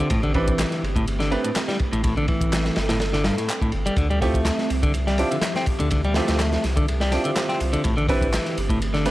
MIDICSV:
0, 0, Header, 1, 6, 480
1, 0, Start_track
1, 0, Key_signature, -1, "minor"
1, 0, Tempo, 483871
1, 107, Time_signature, 4, 2, 24, 8
1, 9036, End_track
2, 0, Start_track
2, 0, Title_t, "Grand piano"
2, 0, Program_c, 0, 0
2, 346, Note_on_c, 0, 60, 100
2, 346, Note_on_c, 0, 67, 87
2, 347, Note_on_c, 0, 62, 89
2, 347, Note_on_c, 0, 71, 109
2, 475, Note_off_c, 0, 60, 0
2, 475, Note_off_c, 0, 67, 0
2, 476, Note_off_c, 0, 62, 0
2, 476, Note_off_c, 0, 71, 0
2, 1304, Note_on_c, 0, 60, 93
2, 1305, Note_on_c, 0, 62, 82
2, 1306, Note_on_c, 0, 67, 84
2, 1306, Note_on_c, 0, 71, 103
2, 1434, Note_off_c, 0, 60, 0
2, 1435, Note_off_c, 0, 62, 0
2, 1435, Note_off_c, 0, 67, 0
2, 1435, Note_off_c, 0, 71, 0
2, 4185, Note_on_c, 0, 67, 112
2, 4186, Note_on_c, 0, 60, 92
2, 4186, Note_on_c, 0, 65, 87
2, 4187, Note_on_c, 0, 64, 89
2, 4315, Note_off_c, 0, 60, 0
2, 4315, Note_off_c, 0, 65, 0
2, 4315, Note_off_c, 0, 67, 0
2, 4316, Note_off_c, 0, 64, 0
2, 5143, Note_on_c, 0, 64, 86
2, 5144, Note_on_c, 0, 65, 87
2, 5144, Note_on_c, 0, 67, 100
2, 5146, Note_on_c, 0, 60, 89
2, 5274, Note_off_c, 0, 64, 0
2, 5274, Note_off_c, 0, 65, 0
2, 5274, Note_off_c, 0, 67, 0
2, 5275, Note_off_c, 0, 60, 0
2, 6108, Note_on_c, 0, 65, 79
2, 6109, Note_on_c, 0, 60, 83
2, 6109, Note_on_c, 0, 64, 75
2, 6109, Note_on_c, 0, 67, 95
2, 6304, Note_off_c, 0, 65, 0
2, 6305, Note_off_c, 0, 60, 0
2, 6305, Note_off_c, 0, 64, 0
2, 6305, Note_off_c, 0, 67, 0
2, 7069, Note_on_c, 0, 64, 70
2, 7069, Note_on_c, 0, 65, 66
2, 7070, Note_on_c, 0, 60, 73
2, 7071, Note_on_c, 0, 67, 86
2, 7775, Note_off_c, 0, 60, 0
2, 7775, Note_off_c, 0, 64, 0
2, 7775, Note_off_c, 0, 65, 0
2, 7776, Note_off_c, 0, 67, 0
2, 8027, Note_on_c, 0, 60, 101
2, 8027, Note_on_c, 0, 62, 94
2, 8027, Note_on_c, 0, 67, 93
2, 8028, Note_on_c, 0, 71, 110
2, 8156, Note_off_c, 0, 60, 0
2, 8156, Note_off_c, 0, 62, 0
2, 8156, Note_off_c, 0, 67, 0
2, 8156, Note_off_c, 0, 71, 0
2, 8985, Note_on_c, 0, 71, 106
2, 8986, Note_on_c, 0, 60, 89
2, 8986, Note_on_c, 0, 67, 78
2, 8987, Note_on_c, 0, 62, 83
2, 9036, Note_off_c, 0, 60, 0
2, 9036, Note_off_c, 0, 62, 0
2, 9036, Note_off_c, 0, 67, 0
2, 9036, Note_off_c, 0, 71, 0
2, 9036, End_track
3, 0, Start_track
3, 0, Title_t, "Ambient pad"
3, 0, Program_c, 1, 92
3, 0, Note_on_c, 1, 60, 76
3, 0, Note_on_c, 1, 67, 84
3, 103, Note_on_c, 1, 57, 82
3, 1986, Note_off_c, 1, 67, 0
3, 2020, Note_on_c, 1, 69, 93
3, 3907, Note_off_c, 1, 57, 0
3, 3925, Note_off_c, 1, 69, 0
3, 3934, Note_on_c, 1, 53, 71
3, 3935, Note_on_c, 1, 67, 87
3, 3936, Note_on_c, 1, 76, 73
3, 3937, Note_on_c, 1, 50, 83
3, 7742, Note_off_c, 1, 53, 0
3, 7743, Note_off_c, 1, 76, 0
3, 7744, Note_off_c, 1, 50, 0
3, 7747, Note_off_c, 1, 60, 0
3, 7786, Note_on_c, 1, 60, 73
3, 7792, Note_on_c, 1, 57, 84
3, 9036, Note_off_c, 1, 57, 0
3, 9036, Note_off_c, 1, 60, 0
3, 9036, Note_off_c, 1, 67, 0
3, 9036, End_track
4, 0, Start_track
4, 0, Title_t, "Clean electric guitar"
4, 0, Program_c, 2, 27
4, 103, Note_on_c, 2, 45, 87
4, 196, Note_off_c, 2, 45, 0
4, 230, Note_on_c, 2, 50, 107
4, 334, Note_off_c, 2, 50, 0
4, 345, Note_on_c, 2, 52, 81
4, 815, Note_off_c, 2, 52, 0
4, 951, Note_on_c, 2, 45, 104
4, 1033, Note_off_c, 2, 45, 0
4, 1188, Note_on_c, 2, 50, 106
4, 1293, Note_off_c, 2, 50, 0
4, 1303, Note_on_c, 2, 57, 77
4, 1397, Note_off_c, 2, 57, 0
4, 1434, Note_on_c, 2, 45, 79
4, 1483, Note_off_c, 2, 45, 0
4, 1670, Note_on_c, 2, 55, 75
4, 1753, Note_off_c, 2, 55, 0
4, 1912, Note_on_c, 2, 45, 104
4, 1994, Note_off_c, 2, 45, 0
4, 2024, Note_on_c, 2, 45, 86
4, 2117, Note_off_c, 2, 45, 0
4, 2154, Note_on_c, 2, 50, 110
4, 2256, Note_off_c, 2, 50, 0
4, 2266, Note_on_c, 2, 52, 86
4, 2736, Note_off_c, 2, 52, 0
4, 2868, Note_on_c, 2, 45, 105
4, 2952, Note_off_c, 2, 45, 0
4, 3110, Note_on_c, 2, 50, 101
4, 3214, Note_off_c, 2, 50, 0
4, 3224, Note_on_c, 2, 43, 109
4, 3317, Note_off_c, 2, 43, 0
4, 3350, Note_on_c, 2, 45, 75
4, 3454, Note_off_c, 2, 45, 0
4, 3589, Note_on_c, 2, 45, 73
4, 3672, Note_off_c, 2, 45, 0
4, 3828, Note_on_c, 2, 55, 101
4, 3912, Note_off_c, 2, 55, 0
4, 3945, Note_on_c, 2, 50, 81
4, 4038, Note_off_c, 2, 50, 0
4, 4071, Note_on_c, 2, 55, 99
4, 4174, Note_off_c, 2, 55, 0
4, 4182, Note_on_c, 2, 57, 85
4, 4653, Note_off_c, 2, 57, 0
4, 4791, Note_on_c, 2, 50, 108
4, 4873, Note_off_c, 2, 50, 0
4, 5031, Note_on_c, 2, 55, 101
4, 5134, Note_off_c, 2, 55, 0
4, 5148, Note_on_c, 2, 62, 78
4, 5239, Note_off_c, 2, 62, 0
4, 5274, Note_on_c, 2, 50, 76
4, 5323, Note_off_c, 2, 50, 0
4, 5518, Note_on_c, 2, 60, 72
4, 5597, Note_off_c, 2, 60, 0
4, 5752, Note_on_c, 2, 50, 99
4, 5834, Note_off_c, 2, 50, 0
4, 5866, Note_on_c, 2, 50, 84
4, 5958, Note_off_c, 2, 50, 0
4, 5998, Note_on_c, 2, 55, 102
4, 6098, Note_off_c, 2, 55, 0
4, 6110, Note_on_c, 2, 57, 81
4, 6577, Note_off_c, 2, 57, 0
4, 6711, Note_on_c, 2, 50, 103
4, 6793, Note_off_c, 2, 50, 0
4, 6954, Note_on_c, 2, 55, 105
4, 7056, Note_off_c, 2, 55, 0
4, 7065, Note_on_c, 2, 62, 80
4, 7157, Note_off_c, 2, 62, 0
4, 7192, Note_on_c, 2, 50, 77
4, 7242, Note_off_c, 2, 50, 0
4, 7431, Note_on_c, 2, 60, 72
4, 7514, Note_off_c, 2, 60, 0
4, 7669, Note_on_c, 2, 50, 98
4, 7752, Note_off_c, 2, 50, 0
4, 7780, Note_on_c, 2, 45, 79
4, 7875, Note_off_c, 2, 45, 0
4, 7906, Note_on_c, 2, 50, 105
4, 8012, Note_off_c, 2, 50, 0
4, 8021, Note_on_c, 2, 52, 83
4, 8493, Note_off_c, 2, 52, 0
4, 8628, Note_on_c, 2, 45, 104
4, 8712, Note_off_c, 2, 45, 0
4, 8867, Note_on_c, 2, 50, 103
4, 8972, Note_off_c, 2, 50, 0
4, 8984, Note_on_c, 2, 57, 81
4, 9036, Note_off_c, 2, 57, 0
4, 9036, End_track
5, 0, Start_track
5, 0, Title_t, "Sub bass"
5, 0, Program_c, 3, 38
5, 108, Note_on_c, 3, 33, 107
5, 643, Note_off_c, 3, 33, 0
5, 823, Note_on_c, 3, 31, 94
5, 1360, Note_off_c, 3, 31, 0
5, 1911, Note_on_c, 3, 33, 82
5, 2321, Note_off_c, 3, 33, 0
5, 2389, Note_on_c, 3, 33, 92
5, 2680, Note_off_c, 3, 33, 0
5, 2746, Note_on_c, 3, 31, 94
5, 3282, Note_off_c, 3, 31, 0
5, 3706, Note_on_c, 3, 31, 94
5, 3867, Note_off_c, 3, 31, 0
5, 3935, Note_on_c, 3, 38, 104
5, 4476, Note_off_c, 3, 38, 0
5, 4666, Note_on_c, 3, 36, 91
5, 5202, Note_off_c, 3, 36, 0
5, 5754, Note_on_c, 3, 38, 81
5, 6162, Note_off_c, 3, 38, 0
5, 6235, Note_on_c, 3, 38, 90
5, 6524, Note_off_c, 3, 38, 0
5, 6590, Note_on_c, 3, 36, 96
5, 7124, Note_off_c, 3, 36, 0
5, 7546, Note_on_c, 3, 36, 86
5, 7707, Note_off_c, 3, 36, 0
5, 7788, Note_on_c, 3, 33, 104
5, 8323, Note_off_c, 3, 33, 0
5, 8507, Note_on_c, 3, 31, 94
5, 9036, Note_off_c, 3, 31, 0
5, 9036, End_track
6, 0, Start_track
6, 0, Title_t, "Drums"
6, 0, Note_on_c, 9, 51, 45
6, 97, Note_off_c, 9, 51, 0
6, 98, Note_on_c, 9, 51, 99
6, 106, Note_on_c, 9, 36, 122
6, 106, Note_on_c, 9, 42, 53
6, 197, Note_off_c, 9, 51, 0
6, 206, Note_off_c, 9, 36, 0
6, 206, Note_off_c, 9, 42, 0
6, 231, Note_on_c, 9, 42, 30
6, 330, Note_off_c, 9, 42, 0
6, 340, Note_on_c, 9, 51, 66
6, 345, Note_on_c, 9, 36, 100
6, 439, Note_off_c, 9, 51, 0
6, 444, Note_off_c, 9, 36, 0
6, 472, Note_on_c, 9, 42, 68
6, 475, Note_on_c, 9, 36, 101
6, 571, Note_off_c, 9, 42, 0
6, 575, Note_off_c, 9, 36, 0
6, 586, Note_on_c, 9, 51, 89
6, 587, Note_on_c, 9, 39, 123
6, 587, Note_on_c, 9, 42, 58
6, 590, Note_on_c, 9, 38, 120
6, 685, Note_off_c, 9, 51, 0
6, 686, Note_off_c, 9, 39, 0
6, 686, Note_off_c, 9, 42, 0
6, 689, Note_off_c, 9, 38, 0
6, 704, Note_on_c, 9, 38, 35
6, 715, Note_on_c, 9, 42, 30
6, 803, Note_off_c, 9, 38, 0
6, 814, Note_off_c, 9, 42, 0
6, 836, Note_on_c, 9, 51, 67
6, 936, Note_off_c, 9, 51, 0
6, 949, Note_on_c, 9, 36, 100
6, 955, Note_on_c, 9, 42, 66
6, 1048, Note_off_c, 9, 36, 0
6, 1054, Note_off_c, 9, 42, 0
6, 1067, Note_on_c, 9, 42, 55
6, 1070, Note_on_c, 9, 51, 82
6, 1166, Note_off_c, 9, 42, 0
6, 1169, Note_off_c, 9, 51, 0
6, 1194, Note_on_c, 9, 42, 32
6, 1195, Note_on_c, 9, 38, 37
6, 1293, Note_off_c, 9, 42, 0
6, 1295, Note_off_c, 9, 38, 0
6, 1306, Note_on_c, 9, 51, 74
6, 1405, Note_off_c, 9, 51, 0
6, 1431, Note_on_c, 9, 51, 38
6, 1434, Note_on_c, 9, 42, 68
6, 1530, Note_off_c, 9, 51, 0
6, 1533, Note_off_c, 9, 42, 0
6, 1540, Note_on_c, 9, 51, 83
6, 1548, Note_on_c, 9, 39, 107
6, 1548, Note_on_c, 9, 42, 56
6, 1549, Note_on_c, 9, 38, 111
6, 1640, Note_off_c, 9, 51, 0
6, 1647, Note_off_c, 9, 39, 0
6, 1647, Note_off_c, 9, 42, 0
6, 1648, Note_off_c, 9, 38, 0
6, 1674, Note_on_c, 9, 38, 51
6, 1675, Note_on_c, 9, 42, 33
6, 1774, Note_off_c, 9, 38, 0
6, 1774, Note_off_c, 9, 42, 0
6, 1780, Note_on_c, 9, 51, 68
6, 1788, Note_on_c, 9, 36, 90
6, 1879, Note_off_c, 9, 51, 0
6, 1887, Note_off_c, 9, 36, 0
6, 1914, Note_on_c, 9, 51, 40
6, 1915, Note_on_c, 9, 42, 64
6, 2013, Note_off_c, 9, 51, 0
6, 2015, Note_off_c, 9, 42, 0
6, 2020, Note_on_c, 9, 51, 84
6, 2027, Note_on_c, 9, 42, 50
6, 2028, Note_on_c, 9, 36, 108
6, 2120, Note_off_c, 9, 51, 0
6, 2126, Note_off_c, 9, 42, 0
6, 2127, Note_off_c, 9, 36, 0
6, 2156, Note_on_c, 9, 42, 31
6, 2256, Note_off_c, 9, 42, 0
6, 2260, Note_on_c, 9, 51, 65
6, 2269, Note_on_c, 9, 36, 90
6, 2359, Note_off_c, 9, 51, 0
6, 2368, Note_off_c, 9, 36, 0
6, 2388, Note_on_c, 9, 36, 97
6, 2395, Note_on_c, 9, 42, 68
6, 2487, Note_off_c, 9, 36, 0
6, 2494, Note_off_c, 9, 42, 0
6, 2507, Note_on_c, 9, 51, 88
6, 2510, Note_on_c, 9, 39, 113
6, 2510, Note_on_c, 9, 42, 54
6, 2511, Note_on_c, 9, 38, 116
6, 2606, Note_off_c, 9, 51, 0
6, 2609, Note_off_c, 9, 39, 0
6, 2609, Note_off_c, 9, 42, 0
6, 2610, Note_off_c, 9, 38, 0
6, 2626, Note_on_c, 9, 38, 53
6, 2638, Note_on_c, 9, 42, 30
6, 2725, Note_off_c, 9, 38, 0
6, 2735, Note_on_c, 9, 51, 78
6, 2738, Note_off_c, 9, 42, 0
6, 2744, Note_on_c, 9, 38, 91
6, 2834, Note_off_c, 9, 51, 0
6, 2843, Note_off_c, 9, 38, 0
6, 2866, Note_on_c, 9, 38, 112
6, 2867, Note_on_c, 9, 51, 72
6, 2878, Note_on_c, 9, 42, 66
6, 2966, Note_off_c, 9, 38, 0
6, 2966, Note_off_c, 9, 51, 0
6, 2974, Note_on_c, 9, 51, 73
6, 2976, Note_on_c, 9, 38, 93
6, 2977, Note_off_c, 9, 42, 0
6, 2992, Note_on_c, 9, 42, 55
6, 3073, Note_off_c, 9, 51, 0
6, 3075, Note_off_c, 9, 38, 0
6, 3091, Note_off_c, 9, 42, 0
6, 3105, Note_on_c, 9, 38, 52
6, 3118, Note_on_c, 9, 42, 31
6, 3204, Note_off_c, 9, 38, 0
6, 3216, Note_on_c, 9, 38, 99
6, 3217, Note_off_c, 9, 42, 0
6, 3218, Note_on_c, 9, 51, 83
6, 3315, Note_off_c, 9, 38, 0
6, 3317, Note_off_c, 9, 51, 0
6, 3348, Note_on_c, 9, 38, 33
6, 3356, Note_on_c, 9, 42, 64
6, 3447, Note_off_c, 9, 38, 0
6, 3455, Note_off_c, 9, 42, 0
6, 3461, Note_on_c, 9, 51, 67
6, 3468, Note_on_c, 9, 39, 111
6, 3468, Note_on_c, 9, 42, 54
6, 3560, Note_off_c, 9, 51, 0
6, 3567, Note_off_c, 9, 39, 0
6, 3567, Note_off_c, 9, 42, 0
6, 3587, Note_on_c, 9, 36, 86
6, 3595, Note_on_c, 9, 42, 32
6, 3686, Note_off_c, 9, 36, 0
6, 3690, Note_on_c, 9, 51, 65
6, 3694, Note_off_c, 9, 42, 0
6, 3789, Note_off_c, 9, 51, 0
6, 3824, Note_on_c, 9, 51, 44
6, 3836, Note_on_c, 9, 42, 62
6, 3923, Note_off_c, 9, 51, 0
6, 3933, Note_on_c, 9, 51, 84
6, 3935, Note_off_c, 9, 42, 0
6, 3936, Note_on_c, 9, 36, 110
6, 3947, Note_on_c, 9, 42, 50
6, 4032, Note_off_c, 9, 51, 0
6, 4035, Note_off_c, 9, 36, 0
6, 4046, Note_off_c, 9, 42, 0
6, 4074, Note_on_c, 9, 42, 31
6, 4173, Note_off_c, 9, 42, 0
6, 4185, Note_on_c, 9, 36, 94
6, 4185, Note_on_c, 9, 51, 60
6, 4186, Note_off_c, 9, 51, 0
6, 4186, Note_on_c, 9, 51, 81
6, 4284, Note_off_c, 9, 36, 0
6, 4285, Note_off_c, 9, 51, 0
6, 4309, Note_on_c, 9, 36, 100
6, 4314, Note_on_c, 9, 42, 62
6, 4408, Note_off_c, 9, 36, 0
6, 4413, Note_off_c, 9, 42, 0
6, 4413, Note_on_c, 9, 38, 113
6, 4417, Note_on_c, 9, 51, 91
6, 4428, Note_on_c, 9, 39, 112
6, 4428, Note_on_c, 9, 42, 53
6, 4512, Note_off_c, 9, 38, 0
6, 4516, Note_off_c, 9, 51, 0
6, 4527, Note_off_c, 9, 39, 0
6, 4527, Note_off_c, 9, 42, 0
6, 4548, Note_on_c, 9, 38, 40
6, 4555, Note_on_c, 9, 42, 29
6, 4647, Note_off_c, 9, 38, 0
6, 4654, Note_off_c, 9, 42, 0
6, 4663, Note_on_c, 9, 51, 66
6, 4666, Note_off_c, 9, 51, 0
6, 4666, Note_on_c, 9, 51, 82
6, 4765, Note_off_c, 9, 51, 0
6, 4790, Note_on_c, 9, 36, 94
6, 4793, Note_on_c, 9, 42, 64
6, 4890, Note_off_c, 9, 36, 0
6, 4893, Note_off_c, 9, 42, 0
6, 4898, Note_on_c, 9, 51, 76
6, 4907, Note_on_c, 9, 42, 51
6, 4997, Note_off_c, 9, 51, 0
6, 5006, Note_off_c, 9, 42, 0
6, 5037, Note_on_c, 9, 38, 34
6, 5038, Note_on_c, 9, 42, 31
6, 5136, Note_off_c, 9, 38, 0
6, 5137, Note_off_c, 9, 42, 0
6, 5137, Note_on_c, 9, 51, 71
6, 5151, Note_off_c, 9, 51, 0
6, 5151, Note_on_c, 9, 51, 81
6, 5250, Note_off_c, 9, 51, 0
6, 5269, Note_on_c, 9, 51, 46
6, 5276, Note_on_c, 9, 42, 61
6, 5369, Note_off_c, 9, 51, 0
6, 5372, Note_on_c, 9, 38, 117
6, 5372, Note_on_c, 9, 51, 92
6, 5375, Note_off_c, 9, 42, 0
6, 5387, Note_on_c, 9, 39, 102
6, 5387, Note_on_c, 9, 42, 53
6, 5471, Note_off_c, 9, 38, 0
6, 5472, Note_off_c, 9, 51, 0
6, 5486, Note_off_c, 9, 39, 0
6, 5486, Note_off_c, 9, 42, 0
6, 5509, Note_on_c, 9, 38, 52
6, 5513, Note_on_c, 9, 42, 31
6, 5608, Note_off_c, 9, 38, 0
6, 5612, Note_off_c, 9, 42, 0
6, 5616, Note_on_c, 9, 51, 63
6, 5625, Note_on_c, 9, 36, 100
6, 5627, Note_off_c, 9, 51, 0
6, 5627, Note_on_c, 9, 51, 84
6, 5724, Note_off_c, 9, 36, 0
6, 5726, Note_off_c, 9, 51, 0
6, 5739, Note_on_c, 9, 51, 45
6, 5753, Note_on_c, 9, 42, 61
6, 5839, Note_off_c, 9, 51, 0
6, 5852, Note_off_c, 9, 42, 0
6, 5857, Note_on_c, 9, 51, 90
6, 5866, Note_on_c, 9, 42, 50
6, 5872, Note_on_c, 9, 36, 125
6, 5957, Note_off_c, 9, 51, 0
6, 5966, Note_off_c, 9, 42, 0
6, 5971, Note_off_c, 9, 36, 0
6, 5995, Note_on_c, 9, 42, 30
6, 6094, Note_off_c, 9, 42, 0
6, 6094, Note_on_c, 9, 38, 96
6, 6102, Note_on_c, 9, 51, 72
6, 6108, Note_off_c, 9, 51, 0
6, 6108, Note_on_c, 9, 51, 76
6, 6193, Note_off_c, 9, 38, 0
6, 6207, Note_off_c, 9, 51, 0
6, 6227, Note_on_c, 9, 51, 80
6, 6233, Note_on_c, 9, 38, 97
6, 6235, Note_on_c, 9, 42, 65
6, 6327, Note_off_c, 9, 51, 0
6, 6332, Note_off_c, 9, 38, 0
6, 6334, Note_off_c, 9, 42, 0
6, 6339, Note_on_c, 9, 51, 89
6, 6345, Note_on_c, 9, 38, 123
6, 6347, Note_on_c, 9, 39, 106
6, 6347, Note_on_c, 9, 42, 55
6, 6438, Note_off_c, 9, 51, 0
6, 6444, Note_off_c, 9, 38, 0
6, 6446, Note_off_c, 9, 39, 0
6, 6446, Note_off_c, 9, 42, 0
6, 6471, Note_on_c, 9, 38, 54
6, 6475, Note_on_c, 9, 42, 28
6, 6570, Note_off_c, 9, 38, 0
6, 6574, Note_off_c, 9, 42, 0
6, 6583, Note_on_c, 9, 51, 61
6, 6584, Note_on_c, 9, 38, 42
6, 6586, Note_off_c, 9, 51, 0
6, 6586, Note_on_c, 9, 51, 85
6, 6684, Note_off_c, 9, 38, 0
6, 6685, Note_off_c, 9, 51, 0
6, 6714, Note_on_c, 9, 36, 103
6, 6716, Note_on_c, 9, 42, 62
6, 6814, Note_off_c, 9, 36, 0
6, 6815, Note_off_c, 9, 42, 0
6, 6828, Note_on_c, 9, 42, 52
6, 6828, Note_on_c, 9, 51, 83
6, 6927, Note_off_c, 9, 42, 0
6, 6928, Note_off_c, 9, 51, 0
6, 6948, Note_on_c, 9, 38, 54
6, 6955, Note_on_c, 9, 42, 31
6, 6955, Note_on_c, 9, 51, 49
6, 7047, Note_off_c, 9, 38, 0
6, 7054, Note_off_c, 9, 42, 0
6, 7054, Note_off_c, 9, 51, 0
6, 7058, Note_on_c, 9, 38, 42
6, 7059, Note_on_c, 9, 51, 75
6, 7065, Note_off_c, 9, 51, 0
6, 7065, Note_on_c, 9, 51, 82
6, 7157, Note_off_c, 9, 38, 0
6, 7164, Note_off_c, 9, 51, 0
6, 7181, Note_on_c, 9, 51, 44
6, 7192, Note_on_c, 9, 42, 61
6, 7280, Note_off_c, 9, 51, 0
6, 7291, Note_off_c, 9, 42, 0
6, 7300, Note_on_c, 9, 51, 81
6, 7303, Note_on_c, 9, 38, 100
6, 7307, Note_on_c, 9, 39, 102
6, 7307, Note_on_c, 9, 42, 50
6, 7399, Note_off_c, 9, 51, 0
6, 7402, Note_off_c, 9, 38, 0
6, 7406, Note_off_c, 9, 39, 0
6, 7406, Note_off_c, 9, 42, 0
6, 7429, Note_on_c, 9, 38, 32
6, 7435, Note_on_c, 9, 42, 31
6, 7528, Note_off_c, 9, 38, 0
6, 7535, Note_off_c, 9, 42, 0
6, 7541, Note_on_c, 9, 51, 68
6, 7546, Note_off_c, 9, 51, 0
6, 7546, Note_on_c, 9, 51, 86
6, 7646, Note_off_c, 9, 51, 0
6, 7668, Note_on_c, 9, 51, 39
6, 7673, Note_on_c, 9, 42, 64
6, 7767, Note_off_c, 9, 51, 0
6, 7772, Note_off_c, 9, 42, 0
6, 7776, Note_on_c, 9, 51, 87
6, 7786, Note_on_c, 9, 42, 52
6, 7787, Note_on_c, 9, 36, 110
6, 7875, Note_off_c, 9, 51, 0
6, 7886, Note_off_c, 9, 42, 0
6, 7887, Note_off_c, 9, 36, 0
6, 7917, Note_on_c, 9, 42, 32
6, 8016, Note_off_c, 9, 42, 0
6, 8020, Note_on_c, 9, 51, 62
6, 8021, Note_on_c, 9, 36, 99
6, 8028, Note_off_c, 9, 51, 0
6, 8028, Note_on_c, 9, 51, 85
6, 8120, Note_off_c, 9, 36, 0
6, 8127, Note_off_c, 9, 51, 0
6, 8149, Note_on_c, 9, 36, 97
6, 8159, Note_on_c, 9, 42, 66
6, 8248, Note_off_c, 9, 36, 0
6, 8258, Note_off_c, 9, 42, 0
6, 8266, Note_on_c, 9, 51, 96
6, 8269, Note_on_c, 9, 39, 105
6, 8269, Note_on_c, 9, 42, 58
6, 8272, Note_on_c, 9, 38, 108
6, 8365, Note_off_c, 9, 51, 0
6, 8369, Note_off_c, 9, 39, 0
6, 8369, Note_off_c, 9, 42, 0
6, 8372, Note_off_c, 9, 38, 0
6, 8383, Note_on_c, 9, 38, 38
6, 8396, Note_on_c, 9, 42, 30
6, 8483, Note_off_c, 9, 38, 0
6, 8496, Note_off_c, 9, 42, 0
6, 8507, Note_on_c, 9, 51, 86
6, 8606, Note_off_c, 9, 51, 0
6, 8626, Note_on_c, 9, 36, 100
6, 8633, Note_on_c, 9, 42, 61
6, 8725, Note_off_c, 9, 36, 0
6, 8732, Note_off_c, 9, 42, 0
6, 8748, Note_on_c, 9, 42, 52
6, 8750, Note_on_c, 9, 51, 83
6, 8847, Note_off_c, 9, 42, 0
6, 8849, Note_off_c, 9, 51, 0
6, 8873, Note_on_c, 9, 38, 35
6, 8873, Note_on_c, 9, 42, 32
6, 8972, Note_off_c, 9, 38, 0
6, 8972, Note_off_c, 9, 42, 0
6, 8982, Note_on_c, 9, 51, 82
6, 8986, Note_off_c, 9, 51, 0
6, 8986, Note_on_c, 9, 51, 91
6, 9036, Note_off_c, 9, 51, 0
6, 9036, End_track
0, 0, End_of_file